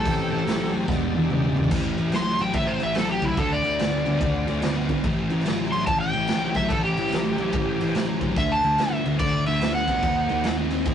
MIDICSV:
0, 0, Header, 1, 6, 480
1, 0, Start_track
1, 0, Tempo, 414651
1, 86, Time_signature, 4, 2, 24, 8
1, 12670, End_track
2, 0, Start_track
2, 0, Title_t, "Electric slide guitar"
2, 0, Program_c, 0, 29
2, 0, Note_on_c, 0, 69, 94
2, 857, Note_off_c, 0, 69, 0
2, 2498, Note_on_c, 0, 84, 109
2, 2795, Note_on_c, 0, 79, 98
2, 2804, Note_off_c, 0, 84, 0
2, 2945, Note_on_c, 0, 76, 91
2, 2957, Note_off_c, 0, 79, 0
2, 3093, Note_on_c, 0, 72, 89
2, 3112, Note_off_c, 0, 76, 0
2, 3266, Note_off_c, 0, 72, 0
2, 3277, Note_on_c, 0, 76, 97
2, 3419, Note_on_c, 0, 69, 99
2, 3439, Note_off_c, 0, 76, 0
2, 3589, Note_off_c, 0, 69, 0
2, 3609, Note_on_c, 0, 67, 87
2, 3756, Note_on_c, 0, 64, 88
2, 3765, Note_off_c, 0, 67, 0
2, 3918, Note_off_c, 0, 64, 0
2, 3921, Note_on_c, 0, 69, 90
2, 4081, Note_off_c, 0, 69, 0
2, 4081, Note_on_c, 0, 74, 96
2, 5484, Note_off_c, 0, 74, 0
2, 6623, Note_on_c, 0, 84, 93
2, 6790, Note_off_c, 0, 84, 0
2, 6795, Note_on_c, 0, 81, 85
2, 6948, Note_off_c, 0, 81, 0
2, 6953, Note_on_c, 0, 79, 100
2, 7584, Note_off_c, 0, 79, 0
2, 7596, Note_on_c, 0, 76, 94
2, 7737, Note_on_c, 0, 69, 88
2, 7760, Note_off_c, 0, 76, 0
2, 7910, Note_off_c, 0, 69, 0
2, 7922, Note_on_c, 0, 67, 90
2, 9325, Note_off_c, 0, 67, 0
2, 9698, Note_on_c, 0, 76, 90
2, 9851, Note_off_c, 0, 76, 0
2, 9859, Note_on_c, 0, 81, 78
2, 10338, Note_off_c, 0, 81, 0
2, 10338, Note_on_c, 0, 76, 85
2, 10638, Note_off_c, 0, 76, 0
2, 10643, Note_on_c, 0, 74, 94
2, 10958, Note_off_c, 0, 74, 0
2, 10964, Note_on_c, 0, 76, 100
2, 11278, Note_off_c, 0, 76, 0
2, 11285, Note_on_c, 0, 78, 96
2, 12218, Note_off_c, 0, 78, 0
2, 12670, End_track
3, 0, Start_track
3, 0, Title_t, "Tonewheel organ"
3, 0, Program_c, 1, 16
3, 0, Note_on_c, 1, 60, 75
3, 0, Note_on_c, 1, 61, 79
3, 0, Note_on_c, 1, 67, 75
3, 998, Note_off_c, 1, 61, 0
3, 1004, Note_off_c, 1, 67, 0
3, 1005, Note_off_c, 1, 60, 0
3, 1034, Note_on_c, 1, 62, 72
3, 1038, Note_on_c, 1, 56, 73
3, 1045, Note_on_c, 1, 67, 70
3, 1988, Note_off_c, 1, 67, 0
3, 1992, Note_off_c, 1, 62, 0
3, 1994, Note_off_c, 1, 56, 0
3, 2002, Note_on_c, 1, 67, 57
3, 2011, Note_on_c, 1, 60, 61
3, 2019, Note_on_c, 1, 61, 60
3, 3903, Note_off_c, 1, 60, 0
3, 3908, Note_off_c, 1, 67, 0
3, 3917, Note_off_c, 1, 61, 0
3, 3917, Note_on_c, 1, 60, 66
3, 3917, Note_on_c, 1, 65, 58
3, 3918, Note_on_c, 1, 66, 64
3, 5827, Note_off_c, 1, 60, 0
3, 5827, Note_off_c, 1, 65, 0
3, 5827, Note_off_c, 1, 66, 0
3, 5848, Note_on_c, 1, 61, 60
3, 5857, Note_on_c, 1, 67, 61
3, 5858, Note_on_c, 1, 72, 61
3, 9653, Note_off_c, 1, 61, 0
3, 9658, Note_off_c, 1, 67, 0
3, 9658, Note_off_c, 1, 72, 0
3, 9689, Note_on_c, 1, 72, 56
3, 9692, Note_on_c, 1, 66, 61
3, 9694, Note_on_c, 1, 65, 59
3, 11579, Note_off_c, 1, 72, 0
3, 11585, Note_off_c, 1, 66, 0
3, 11593, Note_off_c, 1, 65, 0
3, 11593, Note_on_c, 1, 72, 62
3, 11599, Note_on_c, 1, 66, 68
3, 11601, Note_on_c, 1, 63, 64
3, 12670, Note_off_c, 1, 63, 0
3, 12670, Note_off_c, 1, 66, 0
3, 12670, Note_off_c, 1, 72, 0
3, 12670, End_track
4, 0, Start_track
4, 0, Title_t, "Distorted electric guitar"
4, 0, Program_c, 2, 30
4, 66, Note_on_c, 2, 45, 84
4, 71, Note_on_c, 2, 52, 92
4, 344, Note_off_c, 2, 45, 0
4, 354, Note_off_c, 2, 52, 0
4, 358, Note_on_c, 2, 45, 65
4, 366, Note_on_c, 2, 52, 89
4, 517, Note_off_c, 2, 45, 0
4, 531, Note_on_c, 2, 45, 86
4, 534, Note_off_c, 2, 52, 0
4, 538, Note_on_c, 2, 54, 101
4, 824, Note_off_c, 2, 45, 0
4, 828, Note_off_c, 2, 54, 0
4, 842, Note_on_c, 2, 45, 73
4, 847, Note_on_c, 2, 54, 90
4, 1008, Note_off_c, 2, 45, 0
4, 1008, Note_on_c, 2, 40, 83
4, 1012, Note_on_c, 2, 47, 96
4, 1016, Note_off_c, 2, 54, 0
4, 1303, Note_off_c, 2, 40, 0
4, 1305, Note_off_c, 2, 47, 0
4, 1323, Note_on_c, 2, 40, 75
4, 1333, Note_on_c, 2, 47, 87
4, 1489, Note_off_c, 2, 40, 0
4, 1500, Note_off_c, 2, 47, 0
4, 1503, Note_on_c, 2, 40, 91
4, 1510, Note_on_c, 2, 49, 91
4, 1786, Note_off_c, 2, 40, 0
4, 1794, Note_off_c, 2, 49, 0
4, 1799, Note_on_c, 2, 40, 72
4, 1810, Note_on_c, 2, 49, 85
4, 1972, Note_off_c, 2, 49, 0
4, 1973, Note_off_c, 2, 40, 0
4, 1976, Note_on_c, 2, 45, 79
4, 1983, Note_on_c, 2, 52, 84
4, 2265, Note_off_c, 2, 45, 0
4, 2271, Note_off_c, 2, 52, 0
4, 2279, Note_on_c, 2, 45, 71
4, 2285, Note_on_c, 2, 52, 76
4, 2444, Note_off_c, 2, 45, 0
4, 2456, Note_off_c, 2, 52, 0
4, 2458, Note_on_c, 2, 45, 80
4, 2462, Note_on_c, 2, 54, 83
4, 2749, Note_off_c, 2, 45, 0
4, 2751, Note_off_c, 2, 54, 0
4, 2779, Note_on_c, 2, 45, 68
4, 2780, Note_on_c, 2, 54, 87
4, 2938, Note_off_c, 2, 45, 0
4, 2944, Note_off_c, 2, 54, 0
4, 2951, Note_on_c, 2, 45, 75
4, 2958, Note_on_c, 2, 52, 93
4, 3236, Note_off_c, 2, 45, 0
4, 3239, Note_off_c, 2, 52, 0
4, 3269, Note_on_c, 2, 45, 71
4, 3275, Note_on_c, 2, 52, 82
4, 3429, Note_off_c, 2, 45, 0
4, 3432, Note_off_c, 2, 52, 0
4, 3441, Note_on_c, 2, 45, 83
4, 3444, Note_on_c, 2, 54, 98
4, 3721, Note_off_c, 2, 45, 0
4, 3723, Note_off_c, 2, 54, 0
4, 3738, Note_on_c, 2, 45, 84
4, 3745, Note_on_c, 2, 54, 82
4, 3904, Note_off_c, 2, 45, 0
4, 3907, Note_off_c, 2, 54, 0
4, 3913, Note_on_c, 2, 50, 81
4, 3920, Note_on_c, 2, 57, 83
4, 4193, Note_off_c, 2, 50, 0
4, 4201, Note_off_c, 2, 57, 0
4, 4207, Note_on_c, 2, 50, 72
4, 4217, Note_on_c, 2, 57, 87
4, 4379, Note_off_c, 2, 50, 0
4, 4383, Note_off_c, 2, 57, 0
4, 4394, Note_on_c, 2, 50, 82
4, 4398, Note_on_c, 2, 59, 81
4, 4679, Note_off_c, 2, 50, 0
4, 4681, Note_off_c, 2, 59, 0
4, 4702, Note_on_c, 2, 50, 70
4, 4716, Note_on_c, 2, 59, 84
4, 4866, Note_off_c, 2, 50, 0
4, 4874, Note_off_c, 2, 59, 0
4, 4880, Note_on_c, 2, 50, 84
4, 4886, Note_on_c, 2, 57, 97
4, 5162, Note_off_c, 2, 50, 0
4, 5165, Note_off_c, 2, 57, 0
4, 5184, Note_on_c, 2, 50, 67
4, 5194, Note_on_c, 2, 57, 86
4, 5337, Note_off_c, 2, 50, 0
4, 5350, Note_off_c, 2, 57, 0
4, 5351, Note_on_c, 2, 50, 78
4, 5354, Note_on_c, 2, 59, 88
4, 5637, Note_off_c, 2, 50, 0
4, 5639, Note_off_c, 2, 59, 0
4, 5668, Note_on_c, 2, 50, 83
4, 5679, Note_on_c, 2, 59, 78
4, 5830, Note_off_c, 2, 50, 0
4, 5832, Note_off_c, 2, 59, 0
4, 5834, Note_on_c, 2, 45, 73
4, 5837, Note_on_c, 2, 52, 102
4, 6119, Note_off_c, 2, 45, 0
4, 6121, Note_off_c, 2, 52, 0
4, 6141, Note_on_c, 2, 45, 68
4, 6152, Note_on_c, 2, 52, 82
4, 6295, Note_off_c, 2, 45, 0
4, 6309, Note_on_c, 2, 45, 83
4, 6312, Note_off_c, 2, 52, 0
4, 6318, Note_on_c, 2, 54, 95
4, 6597, Note_off_c, 2, 45, 0
4, 6602, Note_off_c, 2, 54, 0
4, 6615, Note_on_c, 2, 45, 73
4, 6620, Note_on_c, 2, 54, 84
4, 6784, Note_off_c, 2, 45, 0
4, 6787, Note_off_c, 2, 54, 0
4, 6806, Note_on_c, 2, 45, 84
4, 6809, Note_on_c, 2, 52, 84
4, 7086, Note_off_c, 2, 45, 0
4, 7087, Note_off_c, 2, 52, 0
4, 7111, Note_on_c, 2, 45, 67
4, 7121, Note_on_c, 2, 52, 87
4, 7272, Note_off_c, 2, 45, 0
4, 7277, Note_off_c, 2, 52, 0
4, 7285, Note_on_c, 2, 45, 87
4, 7291, Note_on_c, 2, 54, 91
4, 7565, Note_off_c, 2, 45, 0
4, 7568, Note_off_c, 2, 54, 0
4, 7597, Note_on_c, 2, 54, 87
4, 7603, Note_on_c, 2, 45, 76
4, 7755, Note_off_c, 2, 54, 0
4, 7758, Note_off_c, 2, 45, 0
4, 7774, Note_on_c, 2, 45, 82
4, 7779, Note_on_c, 2, 52, 95
4, 8050, Note_off_c, 2, 45, 0
4, 8052, Note_off_c, 2, 52, 0
4, 8076, Note_on_c, 2, 45, 71
4, 8086, Note_on_c, 2, 52, 81
4, 8235, Note_off_c, 2, 45, 0
4, 8240, Note_off_c, 2, 52, 0
4, 8266, Note_on_c, 2, 45, 82
4, 8270, Note_on_c, 2, 54, 88
4, 8536, Note_off_c, 2, 45, 0
4, 8538, Note_off_c, 2, 54, 0
4, 8568, Note_on_c, 2, 45, 71
4, 8576, Note_on_c, 2, 54, 85
4, 8720, Note_off_c, 2, 45, 0
4, 8724, Note_off_c, 2, 54, 0
4, 8735, Note_on_c, 2, 45, 80
4, 8744, Note_on_c, 2, 52, 86
4, 9010, Note_off_c, 2, 45, 0
4, 9015, Note_off_c, 2, 52, 0
4, 9041, Note_on_c, 2, 45, 75
4, 9045, Note_on_c, 2, 52, 83
4, 9194, Note_off_c, 2, 45, 0
4, 9199, Note_off_c, 2, 52, 0
4, 9208, Note_on_c, 2, 45, 85
4, 9218, Note_on_c, 2, 54, 101
4, 9487, Note_off_c, 2, 45, 0
4, 9492, Note_off_c, 2, 54, 0
4, 9521, Note_on_c, 2, 45, 74
4, 9528, Note_on_c, 2, 54, 87
4, 9677, Note_off_c, 2, 45, 0
4, 9680, Note_off_c, 2, 54, 0
4, 9704, Note_on_c, 2, 50, 80
4, 9712, Note_on_c, 2, 57, 83
4, 9974, Note_off_c, 2, 50, 0
4, 9978, Note_off_c, 2, 57, 0
4, 10009, Note_on_c, 2, 50, 68
4, 10010, Note_on_c, 2, 57, 82
4, 10161, Note_off_c, 2, 50, 0
4, 10162, Note_off_c, 2, 57, 0
4, 10175, Note_on_c, 2, 50, 82
4, 10179, Note_on_c, 2, 59, 99
4, 10450, Note_off_c, 2, 50, 0
4, 10452, Note_off_c, 2, 59, 0
4, 10489, Note_on_c, 2, 50, 74
4, 10491, Note_on_c, 2, 59, 81
4, 10640, Note_off_c, 2, 50, 0
4, 10641, Note_off_c, 2, 59, 0
4, 10652, Note_on_c, 2, 50, 81
4, 10655, Note_on_c, 2, 57, 88
4, 10928, Note_off_c, 2, 50, 0
4, 10930, Note_off_c, 2, 57, 0
4, 10973, Note_on_c, 2, 50, 73
4, 10974, Note_on_c, 2, 57, 78
4, 11116, Note_off_c, 2, 50, 0
4, 11123, Note_off_c, 2, 57, 0
4, 11130, Note_on_c, 2, 50, 83
4, 11143, Note_on_c, 2, 59, 106
4, 11407, Note_off_c, 2, 50, 0
4, 11413, Note_off_c, 2, 59, 0
4, 11442, Note_on_c, 2, 50, 69
4, 11457, Note_on_c, 2, 59, 96
4, 11596, Note_off_c, 2, 50, 0
4, 11604, Note_off_c, 2, 59, 0
4, 11616, Note_on_c, 2, 51, 81
4, 11623, Note_on_c, 2, 58, 89
4, 11889, Note_off_c, 2, 51, 0
4, 11892, Note_off_c, 2, 58, 0
4, 11925, Note_on_c, 2, 58, 84
4, 11927, Note_on_c, 2, 51, 76
4, 12075, Note_off_c, 2, 51, 0
4, 12077, Note_off_c, 2, 58, 0
4, 12089, Note_on_c, 2, 51, 86
4, 12091, Note_on_c, 2, 60, 88
4, 12365, Note_off_c, 2, 51, 0
4, 12366, Note_off_c, 2, 60, 0
4, 12401, Note_on_c, 2, 51, 67
4, 12408, Note_on_c, 2, 60, 81
4, 12555, Note_off_c, 2, 51, 0
4, 12558, Note_off_c, 2, 60, 0
4, 12571, Note_on_c, 2, 51, 82
4, 12577, Note_on_c, 2, 58, 86
4, 12670, Note_off_c, 2, 51, 0
4, 12670, Note_off_c, 2, 58, 0
4, 12670, End_track
5, 0, Start_track
5, 0, Title_t, "Picked electric bass"
5, 0, Program_c, 3, 34
5, 67, Note_on_c, 3, 33, 85
5, 339, Note_off_c, 3, 33, 0
5, 397, Note_on_c, 3, 33, 88
5, 545, Note_off_c, 3, 33, 0
5, 553, Note_on_c, 3, 33, 88
5, 823, Note_off_c, 3, 33, 0
5, 860, Note_on_c, 3, 33, 93
5, 1010, Note_off_c, 3, 33, 0
5, 1017, Note_on_c, 3, 28, 101
5, 1294, Note_off_c, 3, 28, 0
5, 1325, Note_on_c, 3, 28, 92
5, 1487, Note_off_c, 3, 28, 0
5, 1498, Note_on_c, 3, 28, 90
5, 1775, Note_off_c, 3, 28, 0
5, 1817, Note_on_c, 3, 32, 78
5, 1968, Note_off_c, 3, 32, 0
5, 1975, Note_on_c, 3, 33, 76
5, 2253, Note_off_c, 3, 33, 0
5, 2309, Note_on_c, 3, 33, 84
5, 2461, Note_off_c, 3, 33, 0
5, 2481, Note_on_c, 3, 33, 91
5, 2748, Note_off_c, 3, 33, 0
5, 2795, Note_on_c, 3, 33, 89
5, 2927, Note_off_c, 3, 33, 0
5, 2934, Note_on_c, 3, 33, 91
5, 3213, Note_off_c, 3, 33, 0
5, 3276, Note_on_c, 3, 33, 85
5, 3426, Note_off_c, 3, 33, 0
5, 3445, Note_on_c, 3, 33, 90
5, 3711, Note_off_c, 3, 33, 0
5, 3734, Note_on_c, 3, 37, 84
5, 3893, Note_off_c, 3, 37, 0
5, 3899, Note_on_c, 3, 38, 81
5, 4176, Note_off_c, 3, 38, 0
5, 4224, Note_on_c, 3, 38, 84
5, 4379, Note_off_c, 3, 38, 0
5, 4406, Note_on_c, 3, 38, 88
5, 4672, Note_off_c, 3, 38, 0
5, 4712, Note_on_c, 3, 38, 87
5, 4862, Note_off_c, 3, 38, 0
5, 4869, Note_on_c, 3, 38, 93
5, 5143, Note_off_c, 3, 38, 0
5, 5207, Note_on_c, 3, 38, 82
5, 5353, Note_off_c, 3, 38, 0
5, 5374, Note_on_c, 3, 38, 96
5, 5637, Note_off_c, 3, 38, 0
5, 5659, Note_on_c, 3, 31, 90
5, 5817, Note_off_c, 3, 31, 0
5, 5830, Note_on_c, 3, 33, 81
5, 6104, Note_off_c, 3, 33, 0
5, 6156, Note_on_c, 3, 33, 92
5, 6307, Note_off_c, 3, 33, 0
5, 6326, Note_on_c, 3, 33, 89
5, 6593, Note_off_c, 3, 33, 0
5, 6635, Note_on_c, 3, 33, 92
5, 6787, Note_off_c, 3, 33, 0
5, 6797, Note_on_c, 3, 33, 100
5, 7068, Note_off_c, 3, 33, 0
5, 7130, Note_on_c, 3, 33, 92
5, 7275, Note_off_c, 3, 33, 0
5, 7305, Note_on_c, 3, 33, 97
5, 7564, Note_off_c, 3, 33, 0
5, 7589, Note_on_c, 3, 33, 86
5, 7744, Note_off_c, 3, 33, 0
5, 7762, Note_on_c, 3, 33, 76
5, 8031, Note_off_c, 3, 33, 0
5, 8072, Note_on_c, 3, 33, 89
5, 8225, Note_off_c, 3, 33, 0
5, 8247, Note_on_c, 3, 33, 89
5, 8514, Note_off_c, 3, 33, 0
5, 8544, Note_on_c, 3, 33, 94
5, 8701, Note_off_c, 3, 33, 0
5, 8721, Note_on_c, 3, 33, 87
5, 8991, Note_off_c, 3, 33, 0
5, 9032, Note_on_c, 3, 33, 80
5, 9185, Note_off_c, 3, 33, 0
5, 9192, Note_on_c, 3, 33, 88
5, 9465, Note_off_c, 3, 33, 0
5, 9506, Note_on_c, 3, 33, 80
5, 9662, Note_off_c, 3, 33, 0
5, 9681, Note_on_c, 3, 38, 83
5, 9950, Note_off_c, 3, 38, 0
5, 9995, Note_on_c, 3, 38, 88
5, 10147, Note_off_c, 3, 38, 0
5, 10177, Note_on_c, 3, 38, 86
5, 10439, Note_off_c, 3, 38, 0
5, 10482, Note_on_c, 3, 38, 95
5, 10631, Note_off_c, 3, 38, 0
5, 10646, Note_on_c, 3, 38, 99
5, 10913, Note_off_c, 3, 38, 0
5, 10967, Note_on_c, 3, 38, 90
5, 11113, Note_off_c, 3, 38, 0
5, 11141, Note_on_c, 3, 38, 98
5, 11401, Note_off_c, 3, 38, 0
5, 11434, Note_on_c, 3, 38, 82
5, 11585, Note_off_c, 3, 38, 0
5, 11617, Note_on_c, 3, 39, 84
5, 11878, Note_off_c, 3, 39, 0
5, 11925, Note_on_c, 3, 39, 91
5, 12071, Note_off_c, 3, 39, 0
5, 12103, Note_on_c, 3, 39, 94
5, 12361, Note_off_c, 3, 39, 0
5, 12401, Note_on_c, 3, 39, 97
5, 12548, Note_off_c, 3, 39, 0
5, 12569, Note_on_c, 3, 39, 94
5, 12670, Note_off_c, 3, 39, 0
5, 12670, End_track
6, 0, Start_track
6, 0, Title_t, "Drums"
6, 64, Note_on_c, 9, 36, 109
6, 67, Note_on_c, 9, 46, 55
6, 180, Note_off_c, 9, 36, 0
6, 183, Note_off_c, 9, 46, 0
6, 545, Note_on_c, 9, 46, 55
6, 564, Note_on_c, 9, 38, 104
6, 661, Note_off_c, 9, 46, 0
6, 679, Note_off_c, 9, 38, 0
6, 1021, Note_on_c, 9, 36, 104
6, 1040, Note_on_c, 9, 38, 60
6, 1137, Note_off_c, 9, 36, 0
6, 1156, Note_off_c, 9, 38, 0
6, 1330, Note_on_c, 9, 48, 73
6, 1445, Note_off_c, 9, 48, 0
6, 1508, Note_on_c, 9, 47, 89
6, 1624, Note_off_c, 9, 47, 0
6, 1665, Note_on_c, 9, 45, 76
6, 1781, Note_off_c, 9, 45, 0
6, 1814, Note_on_c, 9, 43, 85
6, 1900, Note_off_c, 9, 43, 0
6, 1900, Note_on_c, 9, 43, 97
6, 1980, Note_on_c, 9, 36, 102
6, 1980, Note_on_c, 9, 49, 112
6, 1980, Note_on_c, 9, 57, 75
6, 2015, Note_off_c, 9, 43, 0
6, 2095, Note_off_c, 9, 49, 0
6, 2095, Note_off_c, 9, 57, 0
6, 2096, Note_off_c, 9, 36, 0
6, 2291, Note_on_c, 9, 57, 48
6, 2407, Note_off_c, 9, 57, 0
6, 2452, Note_on_c, 9, 57, 74
6, 2471, Note_on_c, 9, 38, 102
6, 2568, Note_off_c, 9, 57, 0
6, 2587, Note_off_c, 9, 38, 0
6, 2761, Note_on_c, 9, 57, 60
6, 2877, Note_off_c, 9, 57, 0
6, 2932, Note_on_c, 9, 57, 77
6, 2938, Note_on_c, 9, 36, 93
6, 3048, Note_off_c, 9, 57, 0
6, 3054, Note_off_c, 9, 36, 0
6, 3239, Note_on_c, 9, 57, 63
6, 3355, Note_off_c, 9, 57, 0
6, 3412, Note_on_c, 9, 57, 78
6, 3430, Note_on_c, 9, 38, 110
6, 3528, Note_off_c, 9, 57, 0
6, 3546, Note_off_c, 9, 38, 0
6, 3724, Note_on_c, 9, 57, 58
6, 3729, Note_on_c, 9, 36, 79
6, 3840, Note_off_c, 9, 57, 0
6, 3845, Note_off_c, 9, 36, 0
6, 3901, Note_on_c, 9, 57, 68
6, 3906, Note_on_c, 9, 36, 99
6, 4017, Note_off_c, 9, 57, 0
6, 4022, Note_off_c, 9, 36, 0
6, 4216, Note_on_c, 9, 57, 50
6, 4332, Note_off_c, 9, 57, 0
6, 4390, Note_on_c, 9, 57, 79
6, 4409, Note_on_c, 9, 38, 98
6, 4506, Note_off_c, 9, 57, 0
6, 4524, Note_off_c, 9, 38, 0
6, 4697, Note_on_c, 9, 57, 58
6, 4813, Note_off_c, 9, 57, 0
6, 4872, Note_on_c, 9, 36, 101
6, 4873, Note_on_c, 9, 57, 67
6, 4988, Note_off_c, 9, 36, 0
6, 4989, Note_off_c, 9, 57, 0
6, 5181, Note_on_c, 9, 57, 59
6, 5297, Note_off_c, 9, 57, 0
6, 5347, Note_on_c, 9, 57, 79
6, 5365, Note_on_c, 9, 38, 109
6, 5462, Note_off_c, 9, 57, 0
6, 5481, Note_off_c, 9, 38, 0
6, 5659, Note_on_c, 9, 57, 54
6, 5662, Note_on_c, 9, 36, 78
6, 5775, Note_off_c, 9, 57, 0
6, 5778, Note_off_c, 9, 36, 0
6, 5828, Note_on_c, 9, 57, 71
6, 5836, Note_on_c, 9, 36, 106
6, 5944, Note_off_c, 9, 57, 0
6, 5951, Note_off_c, 9, 36, 0
6, 6136, Note_on_c, 9, 57, 53
6, 6246, Note_on_c, 9, 38, 32
6, 6252, Note_off_c, 9, 57, 0
6, 6315, Note_on_c, 9, 57, 80
6, 6333, Note_off_c, 9, 38, 0
6, 6333, Note_on_c, 9, 38, 105
6, 6430, Note_off_c, 9, 57, 0
6, 6449, Note_off_c, 9, 38, 0
6, 6629, Note_on_c, 9, 57, 61
6, 6744, Note_off_c, 9, 57, 0
6, 6790, Note_on_c, 9, 57, 82
6, 6795, Note_on_c, 9, 36, 108
6, 6906, Note_off_c, 9, 57, 0
6, 6911, Note_off_c, 9, 36, 0
6, 7097, Note_on_c, 9, 57, 64
6, 7213, Note_off_c, 9, 57, 0
6, 7262, Note_on_c, 9, 57, 78
6, 7280, Note_on_c, 9, 38, 117
6, 7378, Note_off_c, 9, 57, 0
6, 7396, Note_off_c, 9, 38, 0
6, 7574, Note_on_c, 9, 57, 57
6, 7584, Note_on_c, 9, 36, 81
6, 7690, Note_off_c, 9, 57, 0
6, 7700, Note_off_c, 9, 36, 0
6, 7758, Note_on_c, 9, 57, 75
6, 7760, Note_on_c, 9, 36, 96
6, 7873, Note_off_c, 9, 57, 0
6, 7875, Note_off_c, 9, 36, 0
6, 8067, Note_on_c, 9, 57, 59
6, 8173, Note_on_c, 9, 38, 35
6, 8182, Note_off_c, 9, 57, 0
6, 8245, Note_on_c, 9, 57, 77
6, 8263, Note_off_c, 9, 38, 0
6, 8263, Note_on_c, 9, 38, 106
6, 8360, Note_off_c, 9, 57, 0
6, 8379, Note_off_c, 9, 38, 0
6, 8543, Note_on_c, 9, 57, 57
6, 8659, Note_off_c, 9, 57, 0
6, 8710, Note_on_c, 9, 57, 70
6, 8719, Note_on_c, 9, 36, 103
6, 8826, Note_off_c, 9, 57, 0
6, 8835, Note_off_c, 9, 36, 0
6, 9035, Note_on_c, 9, 57, 62
6, 9151, Note_off_c, 9, 57, 0
6, 9199, Note_on_c, 9, 57, 71
6, 9218, Note_on_c, 9, 38, 106
6, 9315, Note_off_c, 9, 57, 0
6, 9333, Note_off_c, 9, 38, 0
6, 9504, Note_on_c, 9, 57, 52
6, 9506, Note_on_c, 9, 36, 79
6, 9620, Note_off_c, 9, 57, 0
6, 9622, Note_off_c, 9, 36, 0
6, 9680, Note_on_c, 9, 57, 69
6, 9683, Note_on_c, 9, 36, 100
6, 9795, Note_off_c, 9, 57, 0
6, 9799, Note_off_c, 9, 36, 0
6, 9996, Note_on_c, 9, 57, 52
6, 10112, Note_off_c, 9, 57, 0
6, 10165, Note_on_c, 9, 57, 69
6, 10184, Note_on_c, 9, 38, 108
6, 10281, Note_off_c, 9, 57, 0
6, 10300, Note_off_c, 9, 38, 0
6, 10482, Note_on_c, 9, 57, 58
6, 10598, Note_off_c, 9, 57, 0
6, 10638, Note_on_c, 9, 57, 75
6, 10645, Note_on_c, 9, 36, 99
6, 10754, Note_off_c, 9, 57, 0
6, 10761, Note_off_c, 9, 36, 0
6, 10952, Note_on_c, 9, 57, 60
6, 11068, Note_off_c, 9, 57, 0
6, 11127, Note_on_c, 9, 57, 88
6, 11146, Note_on_c, 9, 38, 113
6, 11243, Note_off_c, 9, 57, 0
6, 11262, Note_off_c, 9, 38, 0
6, 11434, Note_on_c, 9, 36, 79
6, 11437, Note_on_c, 9, 57, 60
6, 11550, Note_off_c, 9, 36, 0
6, 11553, Note_off_c, 9, 57, 0
6, 11608, Note_on_c, 9, 36, 100
6, 11609, Note_on_c, 9, 57, 80
6, 11724, Note_off_c, 9, 36, 0
6, 11725, Note_off_c, 9, 57, 0
6, 11911, Note_on_c, 9, 57, 54
6, 12027, Note_off_c, 9, 57, 0
6, 12080, Note_on_c, 9, 57, 75
6, 12099, Note_on_c, 9, 38, 111
6, 12196, Note_off_c, 9, 57, 0
6, 12215, Note_off_c, 9, 38, 0
6, 12392, Note_on_c, 9, 57, 62
6, 12508, Note_off_c, 9, 57, 0
6, 12568, Note_on_c, 9, 36, 112
6, 12571, Note_on_c, 9, 57, 77
6, 12670, Note_off_c, 9, 36, 0
6, 12670, Note_off_c, 9, 57, 0
6, 12670, End_track
0, 0, End_of_file